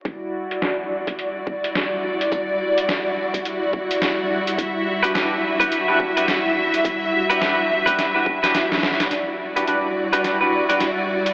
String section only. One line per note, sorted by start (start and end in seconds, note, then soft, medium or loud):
0.05 9.07 G3 medium
0.05 9.07 E4 medium
0.05 9.07 F#4 medium
0.05 4.54 D5 medium
4.59 9.08 E5 medium
9.11 11.34 G3 medium
9.11 11.34 E4 medium
9.11 11.34 F#4 medium
9.11 11.34 D5 medium